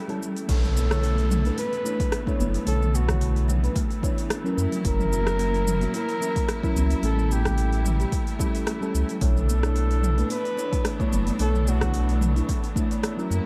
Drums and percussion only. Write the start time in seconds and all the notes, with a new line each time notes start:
0.09 open hi-hat, low conga
0.23 cabasa
0.36 open hi-hat, cabasa
0.49 kick, open hi-hat, crash, cabasa
0.64 mid tom, cabasa
0.76 high conga, cabasa
0.91 cross-stick, open hi-hat, cabasa
1.03 open hi-hat, cabasa
1.18 open hi-hat, cabasa
1.30 mid tom, low conga, cabasa
1.45 open hi-hat, high conga, cabasa
1.58 open hi-hat, cabasa
1.73 open hi-hat, cabasa
1.86 cabasa
2.00 kick, open hi-hat, cabasa
2.12 cross-stick, open hi-hat, cabasa
2.27 kick, cabasa
2.40 high conga, low conga, cabasa
2.54 open hi-hat, low conga, cabasa
2.67 open hi-hat, cabasa
2.81 mid tom, cabasa
2.95 high conga, cabasa
3.09 kick, cross-stick, mid tom, open hi-hat, cabasa
3.21 open hi-hat, cabasa
3.36 open hi-hat, cabasa
3.49 mid tom, low conga, cabasa
3.64 open hi-hat, cabasa
3.76 kick, open hi-hat, cabasa
3.91 open hi-hat, cabasa
4.03 kick, cabasa
4.18 open hi-hat, cabasa
4.30 cross-stick, open hi-hat, cabasa
4.46 cabasa
4.58 cabasa
4.72 open hi-hat, low conga, cabasa
4.85 kick, open hi-hat, cabasa
4.99 mid tom, cabasa
5.12 high conga, cabasa
5.27 cross-stick, open hi-hat, cabasa
5.39 open hi-hat, cabasa
5.54 open hi-hat, cabasa
5.67 mid tom, low conga, cabasa
5.81 open hi-hat, high conga, cabasa
5.94 open hi-hat, cabasa
6.09 open hi-hat, cabasa
6.22 cabasa
6.36 kick, open hi-hat, cabasa
6.49 cross-stick, open hi-hat, cabasa
6.63 kick, cabasa
6.76 high conga, low conga, cabasa
6.90 open hi-hat, low conga, cabasa
7.03 open hi-hat, cabasa
7.18 mid tom, cabasa
7.30 high conga, cabasa
7.45 kick, cross-stick, mid tom, open hi-hat, cabasa
7.58 open hi-hat, cabasa
7.72 open hi-hat, cabasa
7.85 mid tom, low conga, cabasa
8.00 open hi-hat, cabasa
8.12 kick, open hi-hat, cabasa
8.27 open hi-hat, cabasa
8.40 kick, cabasa
8.55 open hi-hat, cabasa
8.67 cross-stick, open hi-hat, cabasa
8.82 cabasa
8.95 cabasa
9.09 open hi-hat, low conga, cabasa
9.21 kick, open hi-hat, cabasa
9.36 mid tom, cabasa
9.49 high conga, cabasa
9.63 cross-stick, open hi-hat, cabasa
9.76 open hi-hat, cabasa
9.91 open hi-hat, cabasa
10.03 mid tom, low conga, cabasa
10.18 open hi-hat, high conga, cabasa
10.30 open hi-hat, cabasa
10.45 open hi-hat, cabasa
10.59 cabasa
10.73 kick, open hi-hat, cabasa
10.85 cross-stick, open hi-hat, cabasa
11.00 kick, cabasa
11.12 high conga, low conga, cabasa
11.27 open hi-hat, low conga, cabasa
11.39 open hi-hat, cabasa
11.54 mid tom, cabasa
11.67 high conga, cabasa
11.81 kick, cross-stick, mid tom, open hi-hat, cabasa
11.94 open hi-hat, cabasa
12.09 open hi-hat, cabasa
12.21 mid tom, low conga, cabasa
12.36 open hi-hat, cabasa
12.49 kick, open hi-hat, cabasa
12.64 open hi-hat, cabasa
12.76 kick, cabasa
12.91 open hi-hat, cabasa
13.04 cross-stick, open hi-hat, cabasa
13.19 cabasa
13.32 cabasa